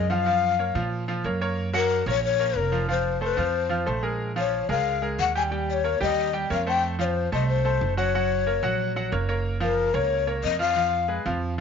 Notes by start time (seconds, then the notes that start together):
Already playing: F#2 D#5
0.10 F3 F4 F5 F#5
0.26 F3 F4 F5
0.59 A#3 A#4 C#5
0.75 A#2 F3 F4 F5
1.08 F3 F4 F5
1.24 F#2 A#3 A#4 C#5
1.41 A#3 A#4 C#5
1.73 F#3 F#4 A#4 F#5
2.06 A#1 A#3 A#4 C#5
2.24 C#5
2.40 A#3 A#4 C#5
2.55 F1 A#4
2.72 F3 F4 F5
2.88 F3 F4 C5 F5
3.21 A3 A4 B4 C5
3.37 F2 F3 F4 C5 F5
3.69 F3 F4 F5
3.86 A#1 A3 A4 C5
4.03 G#3 G#4 A#4
4.36 F3 F4 C#5 F5
4.69 C#2 G#3 G#4 A#4 F5
5.02 G#3 G#4 A#4
5.19 D#2 F#5
5.35 G3 G4 G5 G#5
5.51 G3 G4 G5
5.70 C#5 D5
5.84 A#3 A#4 C#5
6.00 D#2 G3 G4 D#5 G5
6.33 G3 G4 G5
6.50 F2 A#3 A#4 C#5 F5
6.67 A3 A4 C5 G5
6.99 F3 F4 C#5 F5
7.04 C5
7.32 C2 A3 A4 C5 D#5
7.49 C5
7.65 A3 A4 C5
7.81 F#1
7.97 F#3 F#4 C#5 F#5
8.15 F#3 F#4 F#5
8.47 A#3 A#4 C#5
8.63 A#1 F#3 F#4 F#5
8.96 F#3 F#4 F#5
9.12 F#1 A#3 A#4 C#5
9.29 A#3 A#4 C#5
9.60 F3 F4 A#4 F5
9.94 C#2 A#3 A#4 C#5
10.27 A#3 A#4 C#5
10.44 F2 D#5
10.59 F3 F4 F5
10.76 F3 F4 F5
11.08 G#3 G#4 B4
11.26 F2 F3 F4 F5